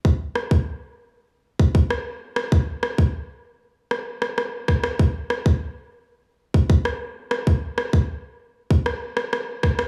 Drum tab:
SD |--r---------r--r|--r------r-rr-rr|--r---------r--r|--r------r-rr-rr|
BD |o--o------oo----|o--o----------o-|o--o------oo----|o--o----o-----o-|